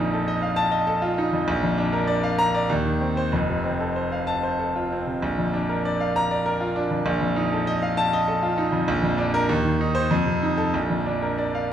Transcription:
Already playing: A#1 F2 D#4
0.13 A4
0.28 D#5
0.42 F5
0.56 A5
0.72 D#5
0.87 A4
1.02 F4
1.18 D#4
1.33 F2
1.48 A#1
1.63 F2
1.78 D4
1.93 A#4
2.07 D5
2.23 F5
2.39 A#5
2.55 D5
2.70 D#2
2.85 D#3
3.01 C4
3.17 C5
3.32 F1 F2
3.49 C3
3.64 C4
3.80 A4
3.96 C5
4.12 F5
4.27 A5
4.43 C5
4.59 A4
4.76 F4
4.92 C4
5.07 C3
5.22 A#1
5.38 F2
5.54 D4
5.69 A#4
5.85 D5
6.00 F5
6.16 A#5
6.31 D5
6.46 A#4
6.60 F4
6.76 D4
6.91 F2
7.06 A#1
7.21 F2
7.36 D#4
7.52 A4
7.67 D#5
7.82 F5
7.97 A5
8.13 D#5
8.28 A4
8.43 F4
8.58 D#4
8.72 F2
8.88 A#1
9.03 F2
9.18 D4
9.34 A#4
9.49 D#2
9.65 D#3
9.81 D#4
9.95 C5
10.11 F2
10.26 C3
10.43 D#4
10.57 A4
10.74 A#1
10.90 F2
11.06 D4
11.22 A#4
11.38 D5
11.55 F5

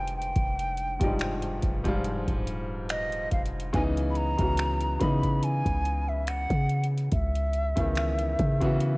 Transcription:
Already playing: F1 G2 G#2 F3 G3 D#4 G5
0.07 closed hi-hat
0.17 G5
0.22 closed hi-hat
0.36 F1, kick, closed hi-hat
0.59 closed hi-hat
0.77 closed hi-hat
1.00 F1 G2 F3 G3, kick, closed hi-hat
1.04 G#2 D#4
1.19 finger snap, closed hi-hat
1.42 closed hi-hat
1.62 F1, kick, closed hi-hat
1.84 G#2 F3 G3, kick, closed hi-hat
1.88 F4
2.04 closed hi-hat
2.27 D#1, kick, closed hi-hat
2.47 closed hi-hat
2.89 D#5, finger snap, closed hi-hat
3.12 closed hi-hat
3.31 F1 F5, kick, closed hi-hat
3.46 closed hi-hat
3.60 closed hi-hat
3.73 C#2 C#3 E3 B3 G#5, kick, closed hi-hat
3.77 D#4
3.97 closed hi-hat
4.10 B5
4.15 A#5, closed hi-hat
4.38 C#2 C#3 E3 B3, kick, closed hi-hat
4.42 F#4
4.57 finger snap, closed hi-hat
4.81 closed hi-hat
4.99 C#3 E3 B3 B5, kick, closed hi-hat
5.03 D#4
5.23 kick, closed hi-hat
5.43 G#5, closed hi-hat
5.65 C#2, kick, closed hi-hat
5.85 closed hi-hat
6.09 E5
6.27 F#5, finger snap, closed hi-hat
6.50 C#3, kick, closed hi-hat
6.70 closed hi-hat
6.84 closed hi-hat
6.98 closed hi-hat
7.12 C#2 E5, kick, closed hi-hat
7.35 closed hi-hat
7.53 closed hi-hat
7.76 C#2 C#3 E3 B3, kick, closed hi-hat
7.80 D#3
7.95 finger snap, closed hi-hat
8.19 closed hi-hat
8.39 C#3, kick, closed hi-hat
8.60 C#3 E3 B3, kick, closed hi-hat
8.64 F#4
8.80 closed hi-hat

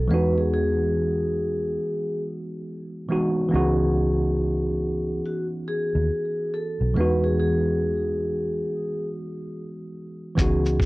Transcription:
Already playing: A4
0.08 E2 E3 G#3 B3 B4
0.12 D#4 F#4
0.38 G#4
0.54 G#4
3.09 E3 G#3 B3 D#4 F#4
3.49 E3 B3 C#4
3.53 C#2 D#4 F#4 G#4
5.25 F#4
5.68 G#4
5.95 D#2
6.54 A4
6.81 B1
6.94 E2 E3 G#3 B3 B4
6.99 D#4 F#4
7.24 G#4
7.39 G#4
10.35 C#2 E3 B3 C#4, kick, closed hi-hat, shaker
10.39 D#4 F#4 G#4
10.66 shaker
10.80 kick, shaker

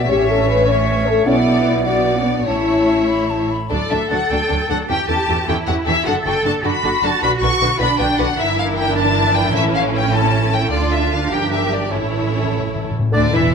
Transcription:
Already playing: B3 D5 E5
0.09 A1 A2 C#4 G4 C#5 E5
0.30 A4
0.48 B4
0.67 C#5 E5
1.08 A4
1.25 B1 B2 B3 C#4 E4 D5 F#5
1.45 D4
1.63 E4
1.85 B3 D4 F#4 D5 F#5
2.18 C#4
2.26 D4
2.46 A1 A2 C#4 E4 C#5 E5 A5
3.08 B5
3.30 A5
3.51 B5
3.70 D2 F#3 D4 A4 D5
3.90 D2 F#3 D4 A4 E5
4.10 D2 F#3 D4 A4 F#5
4.30 D2 F#3 D4 A4 G5
4.49 D2 F#3 D4 A4
4.69 D2 F#3 D4 A4 F#5
4.88 E2 E3 C#4 G4 A4 G5
5.08 E2 E3 C#4 G4 A4 A5
5.28 E2 E3 C#4 G4 A4
5.48 E2 E3 C#4 E4 G4 A4 G5
5.66 E2 E3 C#4 G4 A4 F#5
5.85 E2 E3 C#4 G4 A4 E5
6.05 F#1 D3 D4 F#4 A4 F#5
6.26 F#1 D3 D4 F#4 A4 G5
6.44 F#1 D3 D4 F#4 A4 A5
6.64 F#1 D3 D4 F#4 A4 B5
6.83 F#1 D3 D4 F#4 A4
7.02 F#1 D3 D4 F#4 A4 A5
7.21 B1 D3 D4 F#4 B4 B5
7.41 B1 D3 D4 F#4 B4 C#6
7.61 B1 D3 D4 F#4 B4
7.79 B1 D3 D4 F#4 B4 B5
7.98 B1 D3 D4 F#4 B4 G5
8.18 B1 D3 D4 F#4 B4 F#5
8.37 G1 E3 D4 E4 A#4 E5
8.58 F5
8.77 G5
8.96 D4 A5
9.35 G5
9.54 A1 A2 C#4 A4 E5
9.75 F5
9.96 G5
10.14 A5
10.53 G5
10.70 D2 D3 D4 F4 D5
10.93 E5
11.13 F5
11.30 G1 F3 G4 A#4 G5
11.52 E5
11.73 D5
11.91 A1 A2 E3 C#4 E4 A4 C#5
11.98 A2
12.06 A2
12.14 A2
12.21 A2
12.29 A2
12.37 A2
12.45 A2
12.51 A2
12.60 A2
12.67 A2
12.76 A2
12.83 A2
12.91 A2
12.99 A2
13.12 D2 D3 D4 D5
13.32 E1 E2 E3 E4 E5

